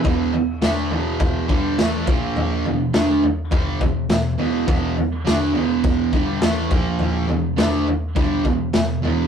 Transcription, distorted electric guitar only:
0.04 E2 B2 E3
0.33 muted distorted electric guitar stroke
0.62 D3 A3 D4
0.91 E2 B2 E3
1.48 G2 D3 G3
1.79 A2 E3 A3
2.07 A#2 F3 A#3
2.66 E2 B2
2.94 D3 A3 D4
3.51 G2 D3 G3
3.81 E2 B2
4.09 E2 B2
4.38 E2 B2 E3
4.67 E2 B2 E3
4.97 muted distorted electric guitar stroke
5.25 D3 A3 D4
5.53 E2 B2 E3
6.13 G2 D3 G3
6.41 A2 E3 A3
6.71 A#2 F3 A#3
7.28 E2 B2
7.57 D3 A3 D4
8.15 G2 D3 G3
8.45 E2 B2
8.74 E2 B2
9.02 E2 B2 E3

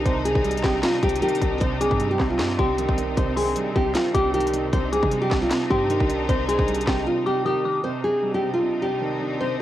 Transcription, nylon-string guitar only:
0.05 C5
0.25 G#4
0.64 G4
0.83 F4
1.03 G4
1.23 G4
1.60 C5
1.81 G#4
2.11 G4
2.30 F4
2.59 G4
3.17 C5
3.37 G#4
3.76 G4
3.95 F4
4.15 G4
4.34 G4
4.73 C5
4.93 G#4
5.22 G4
5.42 F4
5.70 G4
6.29 C5
6.48 G#4
6.87 G4
7.07 F4
7.26 G4
7.46 G4
7.84 C5
8.04 G#4
8.34 G4
8.54 F4
8.82 G4
9.41 C5

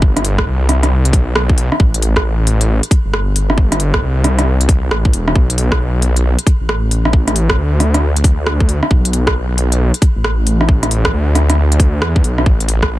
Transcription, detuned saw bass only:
Already playing: G1
0.47 C2
1.13 B1
1.80 A1
3.05 G1
4.02 C2
4.91 A1
5.13 E1
5.36 B1
6.61 A1
7.58 D2
8.24 D2
8.91 B1
10.16 A1
11.13 D2
11.80 D2
12.02 E2
12.24 B1
12.46 A1

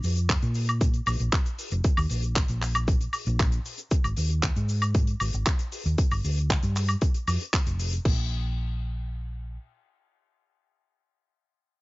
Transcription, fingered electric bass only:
0.04 F2
0.43 A#2
1.07 A#1
1.20 A#1
1.72 F1
1.98 D#2
2.11 A#1
2.49 A#1
3.27 A#1
3.91 muted fingered electric bass stroke
4.04 G#1
4.18 D#2
4.57 G#2
5.21 G#1
5.34 G#1
5.86 D#2
6.12 G1
6.24 D2
6.63 G2
7.28 F2
7.67 F1
8.05 A#1

